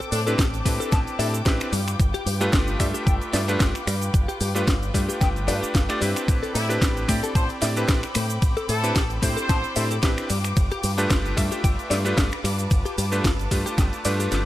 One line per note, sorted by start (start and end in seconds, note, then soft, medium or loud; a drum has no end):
0.00 1.69 C4 medium
0.00 0.09 A4 medium
0.00 12.40 G5 medium
0.00 1.71 A5 medium
0.00 6.24 D6 medium
0.00 cabasa soft
0.12 0.34 A2 loud
0.12 0.21 D4 loud
0.12 0.20 A4 medium
0.12 open hi-hat loud
0.12 shaker medium
0.26 0.40 C4 medium
0.26 0.34 D4 medium
0.26 0.41 D4 medium
0.26 0.41 E4 medium
0.26 0.41 G4 medium
0.26 0.33 A4 medium
0.26 0.41 B4 loud
0.26 cabasa medium
0.26 shaker soft
0.39 0.60 A1 medium
0.39 0.46 G4 medium
0.39 kick loud
0.39 snare loud
0.39 closed hi-hat medium
0.39 cabasa medium
0.39 shaker soft
0.54 closed hi-hat soft
0.54 cabasa soft
0.65 0.77 A2 loud
0.65 0.73 A3 medium
0.65 1.16 C4 medium
0.65 1.16 D4 medium
0.65 1.16 E4 medium
0.65 1.16 G4 medium
0.65 1.17 B4 medium
0.65 kick medium
0.65 open hi-hat loud
0.65 shaker medium
0.80 0.89 A4 loud
0.80 closed hi-hat soft
0.80 cabasa medium
0.80 shaker soft
0.92 1.04 A1 loud
0.92 1.00 A5 medium
0.92 kick loud
0.92 snare medium
0.92 closed hi-hat medium
0.92 cabasa medium
0.92 shaker soft
1.07 closed hi-hat soft
1.07 cabasa soft
1.19 1.41 A2 medium
1.19 1.35 C4 medium
1.19 1.35 D4 medium
1.19 1.35 E4 medium
1.19 1.35 G4 medium
1.19 1.36 A4 medium
1.19 1.26 E5 medium
1.19 open hi-hat loud
1.19 shaker medium
1.34 1.40 A4 medium
1.34 closed hi-hat soft
1.34 cabasa medium
1.34 shaker soft
1.45 1.58 A1 loud
1.45 1.70 C4 loud
1.45 1.70 D4 medium
1.45 1.70 E4 medium
1.45 1.53 G4 medium
1.45 1.70 G4 medium
1.45 1.70 B4 loud
1.45 kick loud
1.45 snare loud
1.45 closed hi-hat medium
1.45 cabasa medium
1.45 shaker soft
1.60 finger snap medium
1.60 closed hi-hat soft
1.60 cabasa soft
1.72 1.94 G2 loud
1.72 1.80 G3 medium
1.72 6.24 F4 medium
1.72 6.24 B4 medium
1.72 open hi-hat loud
1.72 shaker medium
1.88 finger snap medium
1.88 closed hi-hat medium
1.88 cabasa medium
1.88 shaker soft
1.99 2.11 G1 loud
1.99 kick loud
1.99 closed hi-hat medium
1.99 cabasa medium
1.99 shaker soft
2.14 2.23 G4 medium
2.14 closed hi-hat medium
2.14 cabasa soft
2.26 2.48 G2 loud
2.26 2.34 G4 medium
2.26 open hi-hat loud
2.26 shaker medium
2.41 2.77 A3 loud
2.41 2.77 D4 medium
2.41 2.77 F4 medium
2.41 2.77 G4 medium
2.41 2.47 G4 medium
2.41 2.77 B4 loud
2.41 closed hi-hat soft
2.41 cabasa medium
2.41 shaker soft
2.53 2.75 G1 medium
2.53 2.60 F4 medium
2.53 kick loud
2.53 snare loud
2.53 closed hi-hat medium
2.53 cabasa medium
2.53 shaker soft
2.67 closed hi-hat soft
2.67 cabasa soft
2.79 2.91 G2 loud
2.79 2.87 G3 medium
2.79 3.30 A3 medium
2.79 3.30 D4 medium
2.79 3.30 F4 medium
2.79 3.31 G4 medium
2.79 3.31 E5 medium
2.79 finger snap medium
2.79 kick medium
2.79 open hi-hat loud
2.79 shaker medium
2.94 3.04 G4 loud
2.94 closed hi-hat soft
2.94 cabasa medium
2.94 shaker soft
3.06 3.18 G1 loud
3.06 3.14 G5 medium
3.06 kick loud
3.06 closed hi-hat medium
3.06 cabasa medium
3.06 shaker soft
3.22 closed hi-hat soft
3.22 cabasa soft
3.33 3.55 G2 medium
3.33 3.44 A3 medium
3.33 3.44 D4 medium
3.33 3.45 F4 medium
3.33 3.45 G4 medium
3.33 3.41 D5 medium
3.33 3.45 E5 medium
3.33 snare medium
3.33 open hi-hat loud
3.33 shaker medium
3.48 3.72 A3 loud
3.48 3.72 D4 medium
3.48 3.72 F4 medium
3.48 3.54 G4 medium
3.48 3.72 G4 medium
3.48 3.72 B4 loud
3.48 closed hi-hat soft
3.48 cabasa medium
3.48 shaker soft
3.60 3.72 G1 loud
3.60 3.67 F4 medium
3.60 kick loud
3.60 snare loud
3.60 closed hi-hat medium
3.60 cabasa medium
3.60 shaker soft
3.75 finger snap medium
3.75 closed hi-hat soft
3.75 cabasa soft
3.87 4.09 G2 loud
3.87 3.94 G3 medium
3.87 finger snap medium
3.87 open hi-hat loud
3.87 shaker medium
4.02 closed hi-hat soft
4.02 cabasa medium
4.02 shaker soft
4.14 4.25 G1 medium
4.14 kick loud
4.14 closed hi-hat medium
4.14 cabasa medium
4.14 shaker soft
4.28 4.38 G4 medium
4.28 closed hi-hat medium
4.28 cabasa soft
4.41 4.62 G2 loud
4.41 4.48 G4 medium
4.41 open hi-hat loud
4.41 shaker medium
4.55 4.69 A3 medium
4.55 4.69 D4 medium
4.55 4.69 F4 medium
4.55 4.61 G4 medium
4.55 4.69 G4 medium
4.55 4.69 B4 loud
4.55 closed hi-hat soft
4.55 cabasa medium
4.55 shaker soft
4.67 4.89 G1 medium
4.67 4.75 F4 medium
4.67 kick loud
4.67 snare loud
4.67 closed hi-hat medium
4.67 cabasa medium
4.67 shaker soft
4.83 closed hi-hat soft
4.83 cabasa soft
4.94 5.06 G2 loud
4.94 5.02 G3 medium
4.94 5.45 A3 medium
4.94 5.45 D4 medium
4.94 5.45 F4 medium
4.94 5.45 G4 medium
4.94 5.45 B4 medium
4.94 kick medium
4.94 open hi-hat loud
4.94 shaker medium
5.09 5.18 G4 loud
5.09 closed hi-hat soft
5.09 cabasa medium
5.09 shaker soft
5.21 5.49 G1 loud
5.21 5.28 G5 medium
5.21 kick loud
5.21 snare medium
5.21 closed hi-hat medium
5.21 cabasa medium
5.21 shaker soft
5.36 closed hi-hat soft
5.36 cabasa soft
5.47 5.59 G2 loud
5.47 5.85 A3 medium
5.47 5.86 D4 medium
5.47 5.86 F4 medium
5.47 5.86 G4 medium
5.47 5.86 B4 loud
5.47 5.55 D5 medium
5.47 open hi-hat loud
5.47 shaker medium
5.62 5.68 G4 medium
5.62 muted fingered electric bass stroke soft
5.62 closed hi-hat soft
5.62 cabasa medium
5.62 shaker soft
5.74 5.86 G1 loud
5.74 5.82 F4 medium
5.74 kick loud
5.74 snare loud
5.74 closed hi-hat medium
5.74 cabasa medium
5.74 shaker soft
5.89 5.98 A3 loud
5.89 5.98 D4 medium
5.89 5.98 F4 loud
5.89 5.99 G4 loud
5.89 5.99 D5 loud
5.89 finger snap medium
5.89 closed hi-hat soft
5.89 cabasa soft
6.00 6.13 G2 medium
6.00 6.08 G3 medium
6.00 6.66 C4 medium
6.00 6.66 D4 medium
6.00 6.66 E4 medium
6.00 6.66 G4 medium
6.00 6.67 B4 loud
6.00 open hi-hat loud
6.00 shaker medium
6.16 finger snap medium
6.16 closed hi-hat soft
6.16 cabasa medium
6.16 shaker soft
6.28 6.40 A1 loud
6.28 10.26 C4 medium
6.28 10.26 B5 medium
6.28 14.45 D6 medium
6.28 kick loud
6.28 closed hi-hat medium
6.28 ride medium
6.28 cabasa medium
6.28 shaker soft
6.43 6.52 A4 medium
6.43 closed hi-hat medium
6.43 cabasa soft
6.54 6.77 A2 loud
6.54 6.69 E4 loud
6.54 6.62 A4 medium
6.54 open hi-hat loud
6.54 ride medium
6.54 shaker medium
6.69 7.05 C4 medium
6.69 7.05 D4 medium
6.69 7.05 E4 medium
6.69 7.05 G4 medium
6.69 6.76 A4 medium
6.69 7.06 B4 loud
6.69 closed hi-hat soft
6.69 cabasa medium
6.69 shaker soft
6.82 7.03 A1 medium
6.82 6.89 G4 medium
6.82 kick loud
6.82 snare loud
6.82 closed hi-hat medium
6.82 ride medium
6.82 cabasa medium
6.82 shaker soft
6.97 closed hi-hat soft
6.97 cabasa soft
7.08 7.20 A2 loud
7.08 7.16 A3 medium
7.08 7.59 C4 medium
7.08 7.59 D4 medium
7.08 7.59 E4 medium
7.08 7.22 G4 medium
7.08 7.59 G4 medium
7.08 7.59 D5 medium
7.08 finger snap medium
7.08 kick medium
7.08 open hi-hat loud
7.08 ride medium
7.08 shaker medium
7.23 7.32 A4 loud
7.23 closed hi-hat soft
7.23 cabasa medium
7.23 shaker soft
7.35 7.47 A1 loud
7.35 7.49 C5 medium
7.35 7.43 A5 medium
7.35 kick loud
7.35 closed hi-hat medium
7.35 ride medium
7.35 cabasa medium
7.35 shaker soft
7.49 closed hi-hat soft
7.49 cabasa soft
7.61 7.84 A2 medium
7.61 7.73 C4 medium
7.61 7.73 D4 medium
7.61 7.73 E4 medium
7.61 7.73 G4 medium
7.61 7.73 D5 medium
7.61 7.69 E5 medium
7.61 snare medium
7.61 open hi-hat loud
7.61 ride medium
7.61 shaker medium
7.76 8.00 C4 loud
7.76 8.00 D4 medium
7.76 8.00 E4 medium
7.76 8.01 G4 medium
7.76 7.83 A4 medium
7.76 8.01 B4 loud
7.76 closed hi-hat soft
7.76 cabasa medium
7.76 shaker soft
7.88 8.00 A1 loud
7.88 7.96 G4 medium
7.88 kick loud
7.88 snare loud
7.88 closed hi-hat medium
7.88 ride medium
7.88 cabasa medium
7.88 shaker soft
8.03 finger snap medium
8.03 closed hi-hat soft
8.03 cabasa soft
8.15 8.37 A2 loud
8.15 8.23 A3 medium
8.15 finger snap medium
8.15 open hi-hat loud
8.15 ride medium
8.15 shaker medium
8.30 closed hi-hat soft
8.30 cabasa medium
8.30 shaker soft
8.42 8.54 A1 loud
8.42 kick loud
8.42 closed hi-hat medium
8.42 ride medium
8.42 cabasa medium
8.42 shaker soft
8.57 8.66 A4 medium
8.57 closed hi-hat medium
8.57 cabasa soft
8.69 8.91 A2 loud
8.69 9.10 A4 loud
8.69 8.76 A4 medium
8.69 open hi-hat loud
8.69 ride medium
8.69 shaker medium
8.83 8.97 C4 medium
8.83 8.97 D4 medium
8.83 8.97 E4 medium
8.83 8.98 G4 medium
8.83 8.90 A4 medium
8.83 8.98 B4 loud
8.83 closed hi-hat soft
8.83 cabasa medium
8.83 shaker soft
8.96 9.18 A1 medium
8.96 9.03 G4 medium
8.96 kick loud
8.96 snare loud
8.96 closed hi-hat medium
8.96 ride medium
8.96 cabasa medium
8.96 shaker soft
9.10 closed hi-hat soft
9.10 cabasa soft
9.22 9.34 A2 loud
9.22 9.30 A3 medium
9.22 9.73 C4 medium
9.22 9.73 D4 medium
9.22 9.74 E4 medium
9.22 9.74 G4 medium
9.22 9.98 C5 loud
9.22 9.74 C5 medium
9.22 kick medium
9.22 open hi-hat loud
9.22 ride medium
9.22 shaker medium
9.37 9.46 A4 loud
9.37 closed hi-hat soft
9.37 cabasa medium
9.37 shaker soft
9.49 9.61 A1 loud
9.49 9.57 A5 medium
9.49 kick loud
9.49 snare medium
9.49 closed hi-hat medium
9.49 ride medium
9.49 cabasa medium
9.49 shaker soft
9.64 closed hi-hat soft
9.64 cabasa soft
9.76 9.98 A2 medium
9.76 9.92 C4 medium
9.76 9.92 D4 medium
9.76 9.92 E4 medium
9.76 9.92 G4 medium
9.76 9.93 A4 loud
9.76 9.84 E5 medium
9.76 open hi-hat loud
9.76 ride medium
9.76 shaker medium
9.91 9.97 A4 medium
9.91 closed hi-hat soft
9.91 cabasa medium
9.91 shaker soft
10.03 10.15 A1 loud
10.03 10.27 C4 medium
10.03 10.27 D4 medium
10.03 10.27 E4 medium
10.03 10.10 G4 medium
10.03 10.27 G4 medium
10.03 10.27 B4 loud
10.03 kick loud
10.03 snare loud
10.03 closed hi-hat medium
10.03 ride medium
10.03 cabasa medium
10.03 shaker soft
10.18 finger snap medium
10.18 closed hi-hat soft
10.18 cabasa soft
10.30 10.52 G2 medium
10.30 10.37 G3 medium
10.30 14.45 F4 medium
10.30 14.45 B4 medium
10.30 open hi-hat loud
10.30 ride medium
10.30 shaker medium
10.44 finger snap medium
10.44 closed hi-hat medium
10.44 cabasa medium
10.44 shaker soft
10.56 10.68 G1 loud
10.56 kick loud
10.56 closed hi-hat medium
10.56 ride medium
10.56 cabasa medium
10.56 shaker soft
10.71 10.81 G4 medium
10.71 closed hi-hat medium
10.71 cabasa soft
10.83 11.05 G2 loud
10.83 10.91 G4 medium
10.83 open hi-hat loud
10.83 ride medium
10.83 shaker medium
10.98 11.34 A3 medium
10.98 11.34 D4 medium
10.98 11.34 F4 medium
10.98 11.04 G4 medium
10.98 11.34 G4 medium
10.98 11.34 B4 loud
10.98 closed hi-hat soft
10.98 cabasa medium
10.98 shaker soft
11.10 11.32 G1 medium
11.10 11.18 F4 medium
11.10 kick loud
11.10 snare loud
11.10 closed hi-hat medium
11.10 ride medium
11.10 cabasa medium
11.10 shaker soft
11.25 closed hi-hat soft
11.25 cabasa soft
11.36 11.49 G2 loud
11.36 11.44 G3 medium
11.36 11.87 A3 medium
11.36 11.87 D4 medium
11.36 11.88 F4 medium
11.36 11.88 G4 medium
11.36 11.88 E5 medium
11.36 finger snap medium
11.36 kick medium
11.36 open hi-hat loud
11.36 ride medium
11.36 shaker medium
11.52 11.61 G4 loud
11.52 closed hi-hat soft
11.52 cabasa medium
11.52 shaker soft
11.64 11.76 G1 loud
11.64 11.71 G5 medium
11.64 kick loud
11.64 closed hi-hat medium
11.64 ride medium
11.64 cabasa medium
11.64 shaker soft
11.79 closed hi-hat soft
11.79 cabasa soft
11.90 12.12 G2 medium
11.90 12.01 A3 medium
11.90 12.01 D4 medium
11.90 12.02 F4 medium
11.90 12.02 G4 medium
11.90 11.98 D5 medium
11.90 12.02 E5 medium
11.90 snare medium
11.90 open hi-hat loud
11.90 ride medium
11.90 shaker medium
12.05 12.29 A3 loud
12.05 12.29 D4 medium
12.05 12.29 F4 medium
12.05 12.11 G4 medium
12.05 12.29 G4 medium
12.05 12.29 B4 loud
12.05 closed hi-hat soft
12.05 cabasa medium
12.05 shaker soft
12.17 12.29 G1 loud
12.17 12.25 F4 medium
12.17 kick loud
12.17 snare loud
12.17 closed hi-hat medium
12.17 ride medium
12.17 cabasa medium
12.17 shaker soft
12.31 finger snap medium
12.31 closed hi-hat soft
12.31 cabasa soft
12.44 12.66 G2 loud
12.44 12.51 G3 medium
12.44 14.45 A5 medium
12.44 finger snap medium
12.44 open hi-hat loud
12.44 ride medium
12.44 shaker medium
12.59 closed hi-hat medium
12.59 cabasa medium
12.59 shaker soft
12.71 12.83 G1 loud
12.71 kick loud
12.71 closed hi-hat medium
12.71 ride medium
12.71 cabasa medium
12.71 shaker soft
12.85 12.95 G4 medium
12.85 closed hi-hat medium
12.85 cabasa soft
12.98 13.20 G2 loud
12.98 13.05 G4 medium
12.98 open hi-hat loud
12.98 ride medium
12.98 shaker medium
13.12 13.26 A3 medium
13.12 13.26 D4 medium
13.12 13.26 F4 medium
13.12 13.18 G4 medium
13.12 13.26 G4 medium
13.12 13.26 B4 loud
13.12 closed hi-hat soft
13.12 cabasa medium
13.12 shaker soft
13.24 13.46 G1 medium
13.24 13.32 F4 medium
13.24 kick loud
13.24 snare loud
13.24 closed hi-hat medium
13.24 ride medium
13.24 cabasa medium
13.24 shaker soft
13.39 closed hi-hat soft
13.39 cabasa soft
13.51 13.63 G2 loud
13.51 13.59 G3 medium
13.51 14.02 A3 medium
13.51 14.02 D4 medium
13.51 14.02 F4 medium
13.51 14.02 G4 medium
13.51 14.02 B4 medium
13.51 kick medium
13.51 open hi-hat loud
13.51 ride medium
13.51 shaker medium
13.66 13.75 G4 loud
13.66 closed hi-hat soft
13.66 cabasa medium
13.66 shaker soft
13.78 13.90 G1 loud
13.78 13.86 G5 medium
13.78 kick loud
13.78 snare medium
13.78 closed hi-hat medium
13.78 ride medium
13.78 cabasa medium
13.78 shaker soft
13.93 closed hi-hat soft
13.93 cabasa soft
14.05 14.27 G2 medium
14.05 14.43 A3 medium
14.05 14.43 D4 medium
14.05 14.43 F4 medium
14.05 14.43 G4 medium
14.05 14.43 B4 loud
14.05 14.12 D5 medium
14.05 open hi-hat loud
14.05 ride medium
14.05 shaker medium
14.20 14.26 G4 medium
14.20 closed hi-hat soft
14.20 cabasa medium
14.20 shaker soft
14.32 14.43 G1 medium
14.32 14.39 F4 medium
14.32 snare medium
14.32 closed hi-hat medium
14.32 ride medium
14.32 cabasa medium
14.32 shaker soft